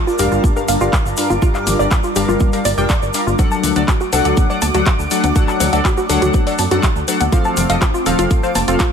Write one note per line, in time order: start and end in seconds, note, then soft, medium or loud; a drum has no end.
0.00 3.35 G3 medium
0.00 3.35 D4 medium
0.00 3.35 F4 medium
0.00 3.35 A#4 medium
0.00 3.35 A5 medium
0.00 8.92 D6 medium
0.07 0.10 F4 medium
0.07 shaker soft
0.19 0.28 F1 medium
0.19 0.53 G2 medium
0.19 0.53 G3 medium
0.19 0.53 D4 medium
0.19 0.22 G4 medium
0.19 0.53 A#4 medium
0.19 0.53 F5 medium
0.19 open hi-hat loud
0.19 shaker loud
0.32 0.40 G1 medium
0.32 0.36 F4 medium
0.32 shaker soft
0.44 kick loud
0.44 high conga medium
0.44 shaker medium
0.56 0.63 G2 medium
0.56 0.63 G3 medium
0.56 0.63 D4 medium
0.56 0.63 A#4 medium
0.56 0.63 F5 medium
0.56 shaker soft
0.68 0.77 G1 medium
0.68 0.73 F5 medium
0.68 open hi-hat loud
0.68 high conga medium
0.68 shaker loud
0.81 0.89 G1 medium
0.81 0.91 G2 medium
0.81 0.91 G3 medium
0.81 0.91 D4 medium
0.81 0.88 F4 medium
0.81 0.91 A#4 medium
0.81 0.91 F5 medium
0.81 shaker soft
0.93 0.96 F4 medium
0.93 kick loud
0.93 clap loud
0.93 shaker medium
1.06 1.14 G1 medium
1.06 shaker soft
1.17 1.28 G2 medium
1.17 1.28 G3 medium
1.17 1.28 D4 medium
1.17 1.28 A#4 medium
1.17 1.28 F5 medium
1.17 open hi-hat loud
1.17 shaker medium
1.30 1.38 G1 medium
1.30 1.33 F4 medium
1.30 high conga medium
1.30 shaker soft
1.42 1.76 G2 medium
1.42 1.76 G3 medium
1.42 1.76 D4 medium
1.42 1.47 F4 medium
1.42 1.76 A#4 medium
1.42 1.76 F5 medium
1.42 kick loud
1.42 shaker medium
1.55 1.59 F5 medium
1.55 clap soft
1.55 shaker soft
1.67 1.75 G1 medium
1.67 open hi-hat loud
1.67 mid tom medium
1.67 shaker loud
1.79 1.87 G1 medium
1.79 1.86 G2 medium
1.79 1.86 G3 medium
1.79 1.86 D4 medium
1.79 1.86 A#4 medium
1.79 1.84 D5 medium
1.79 1.86 D5 medium
1.79 shaker soft
1.91 1.94 F4 medium
1.91 kick loud
1.91 clap loud
1.91 shaker medium
2.03 2.07 F4 medium
2.03 shaker soft
2.16 2.24 G1 loud
2.16 2.50 G2 medium
2.16 2.50 G3 medium
2.16 2.50 D4 medium
2.16 2.19 G4 medium
2.16 2.50 A#4 medium
2.16 2.50 F5 medium
2.16 open hi-hat loud
2.16 shaker medium
2.29 2.37 G1 medium
2.29 2.33 F4 medium
2.29 mid tom medium
2.29 shaker soft
2.40 kick loud
2.40 high conga medium
2.40 shaker soft
2.53 2.59 G2 medium
2.53 2.59 G3 medium
2.53 2.59 D4 medium
2.53 2.59 A#4 medium
2.53 2.60 A#4 medium
2.53 2.59 F5 medium
2.53 open hi-hat medium
2.53 shaker soft
2.65 2.74 G1 medium
2.65 2.72 D5 loud
2.65 open hi-hat loud
2.65 high conga medium
2.65 shaker medium
2.78 2.86 F1 medium
2.78 2.84 G2 medium
2.78 2.84 G3 medium
2.78 2.84 D4 medium
2.78 2.84 A#4 medium
2.78 2.82 D5 medium
2.78 2.84 G5 loud
2.78 shaker soft
2.89 2.95 D5 medium
2.89 kick loud
2.89 clap loud
2.89 shaker medium
3.02 3.10 G1 medium
3.02 shaker soft
3.14 3.21 G3 medium
3.14 3.21 D4 medium
3.14 3.21 A#4 medium
3.14 3.21 F5 medium
3.14 open hi-hat loud
3.14 shaker loud
3.27 3.35 G1 medium
3.27 3.30 F4 medium
3.27 high conga medium
3.27 shaker soft
3.39 3.73 F#3 medium
3.39 8.92 A3 medium
3.39 3.73 D4 medium
3.39 7.28 D4 medium
3.39 3.44 F#4 medium
3.39 7.28 F#4 medium
3.39 3.73 A4 medium
3.39 3.73 F#5 medium
3.39 kick loud
3.39 closed hi-hat soft
3.39 high bongo medium
3.39 shaker soft
3.51 3.56 A5 medium
3.51 shaker soft
3.63 3.72 D2 medium
3.63 open hi-hat loud
3.63 mid tom medium
3.63 shaker loud
3.76 3.84 D2 medium
3.76 3.82 F#3 medium
3.76 3.82 D4 medium
3.76 3.82 A4 medium
3.76 3.82 D5 medium
3.76 3.81 F#5 medium
3.76 closed hi-hat medium
3.76 high bongo soft
3.76 shaker soft
3.88 3.91 F#4 medium
3.88 kick loud
3.88 clap loud
3.88 closed hi-hat soft
3.88 shaker soft
4.01 4.04 F#4 medium
4.01 shaker soft
4.13 4.21 C2 medium
4.13 4.47 F#3 medium
4.13 4.47 D4 medium
4.13 4.47 A4 medium
4.13 4.16 A4 medium
4.13 4.47 F#5 medium
4.13 open hi-hat loud
4.13 high bongo medium
4.13 shaker loud
4.25 4.33 D2 medium
4.25 4.30 F#4 medium
4.25 closed hi-hat medium
4.25 shaker soft
4.37 kick loud
4.37 closed hi-hat soft
4.37 high conga medium
4.37 shaker soft
4.50 4.56 F#3 medium
4.50 4.56 D4 medium
4.50 4.56 A4 medium
4.50 4.57 D5 medium
4.50 4.56 F#5 medium
4.50 high bongo soft
4.50 shaker soft
4.62 4.70 D2 medium
4.62 4.67 A5 medium
4.62 open hi-hat loud
4.62 high conga medium
4.62 shaker medium
4.74 4.83 D2 medium
4.74 4.84 F#3 medium
4.74 4.84 D4 medium
4.74 4.81 F#4 medium
4.74 4.84 A4 medium
4.74 4.84 F#5 medium
4.74 closed hi-hat medium
4.74 shaker soft
4.86 4.89 F#4 medium
4.86 kick loud
4.86 clap loud
4.86 closed hi-hat soft
4.86 high bongo medium
4.86 shaker soft
4.99 5.07 D2 medium
4.99 shaker soft
5.11 5.21 F#3 medium
5.11 5.21 D4 medium
5.11 5.21 A4 medium
5.11 5.21 F#5 medium
5.11 open hi-hat loud
5.11 shaker medium
5.24 5.32 D2 medium
5.24 5.31 F#5 medium
5.24 closed hi-hat medium
5.24 high bongo soft
5.24 high conga medium
5.24 shaker soft
5.36 5.70 F#3 medium
5.36 5.70 D4 medium
5.36 5.41 F#4 medium
5.36 5.70 A4 medium
5.36 5.70 F#5 medium
5.36 kick loud
5.36 closed hi-hat medium
5.36 shaker soft
5.48 5.53 A5 medium
5.48 clap soft
5.48 shaker soft
5.60 5.69 D2 medium
5.60 open hi-hat loud
5.60 mid tom medium
5.60 high bongo medium
5.60 shaker medium
5.73 5.81 D2 medium
5.73 5.79 F#3 medium
5.73 5.79 D4 medium
5.73 5.79 A4 medium
5.73 5.79 D5 medium
5.73 5.78 F#5 medium
5.73 closed hi-hat medium
5.73 shaker soft
5.85 5.88 F#4 medium
5.85 kick loud
5.85 clap loud
5.85 closed hi-hat soft
5.85 shaker soft
5.97 6.00 F#4 medium
5.97 high bongo soft
5.97 shaker soft
6.09 6.18 D2 loud
6.09 6.44 F#3 medium
6.09 6.44 D4 medium
6.09 6.12 A4 medium
6.09 6.44 A4 medium
6.09 6.44 F#5 medium
6.09 open hi-hat loud
6.09 shaker medium
6.22 6.30 D2 medium
6.22 6.27 F#4 medium
6.22 closed hi-hat medium
6.22 mid tom medium
6.22 shaker soft
6.34 kick loud
6.34 closed hi-hat soft
6.34 high bongo medium
6.34 high conga medium
6.34 shaker soft
6.47 6.53 F#3 medium
6.47 6.53 D4 medium
6.47 6.53 A4 medium
6.47 6.54 D5 medium
6.47 6.53 F#5 medium
6.47 open hi-hat medium
6.47 shaker soft
6.58 6.67 F#2 medium
6.58 6.63 A5 medium
6.58 open hi-hat loud
6.58 high conga medium
6.58 shaker medium
6.71 6.79 F#2 medium
6.71 6.81 F#3 medium
6.71 6.81 D4 medium
6.71 6.78 F#4 medium
6.71 6.81 A4 medium
6.71 6.81 F#5 medium
6.71 closed hi-hat medium
6.71 high bongo soft
6.71 shaker soft
6.83 6.86 F#4 medium
6.83 kick loud
6.83 clap loud
6.83 closed hi-hat soft
6.83 shaker soft
6.96 7.04 D2 medium
6.96 shaker soft
7.08 7.18 F#3 medium
7.08 7.18 D4 medium
7.08 7.18 A4 medium
7.08 7.18 F#5 medium
7.08 open hi-hat loud
7.08 high bongo medium
7.08 shaker medium
7.20 7.28 D2 medium
7.20 7.27 F#5 medium
7.20 closed hi-hat medium
7.20 high conga medium
7.20 shaker soft
7.32 7.67 F3 medium
7.32 8.92 C4 medium
7.32 7.67 C4 medium
7.32 8.92 F4 medium
7.32 7.37 F4 medium
7.32 7.67 A4 medium
7.32 7.67 F5 medium
7.32 kick loud
7.32 closed hi-hat medium
7.32 shaker soft
7.44 7.50 A5 medium
7.44 high bongo soft
7.44 shaker soft
7.57 7.65 F1 medium
7.57 open hi-hat loud
7.57 mid tom medium
7.57 shaker medium
7.70 7.78 F1 medium
7.70 7.76 F3 medium
7.70 7.76 C4 medium
7.70 7.76 A4 medium
7.70 7.76 D#5 medium
7.70 7.74 F5 medium
7.70 closed hi-hat medium
7.70 shaker soft
7.82 7.85 F4 medium
7.82 kick loud
7.82 clap loud
7.82 closed hi-hat medium
7.82 high bongo medium
7.82 shaker medium
7.94 7.97 F4 medium
7.94 shaker soft
8.06 8.15 D#1 medium
8.06 8.40 F3 medium
8.06 8.40 C4 medium
8.06 8.40 A4 medium
8.06 8.09 A4 medium
8.06 8.40 F5 medium
8.06 open hi-hat loud
8.06 shaker medium
8.19 8.27 F1 medium
8.19 8.23 F4 medium
8.19 closed hi-hat medium
8.19 high bongo soft
8.19 shaker soft
8.30 kick loud
8.30 closed hi-hat medium
8.30 high conga medium
8.30 shaker soft
8.43 8.50 F3 medium
8.43 8.50 C4 medium
8.43 8.50 A4 medium
8.43 8.50 C5 medium
8.43 8.50 F5 medium
8.43 shaker soft
8.55 8.64 F1 medium
8.55 8.60 A5 medium
8.55 open hi-hat loud
8.55 high bongo medium
8.55 high conga medium
8.55 shaker medium
8.68 8.76 F1 medium
8.68 8.78 F3 medium
8.68 8.78 C4 medium
8.68 8.75 F4 medium
8.68 8.78 A4 medium
8.68 8.78 F5 medium
8.68 closed hi-hat medium
8.68 shaker soft
8.79 8.83 F4 medium
8.79 kick loud
8.79 clap loud
8.79 closed hi-hat medium
8.79 shaker soft